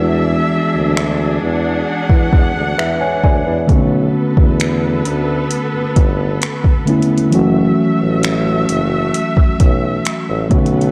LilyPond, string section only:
\new Staff \with { instrumentName = "String section" } { \time 4/4 \key fis \phrygian \tempo 4 = 66 << { e''4. fis''2~ fis''8 | b'1 | e''2.~ e''8 b'8 | } \\ { <d' gis'>1 | <b a'>1 | <a fis'>2.~ <a fis'>8 <b a'>8 | } >> }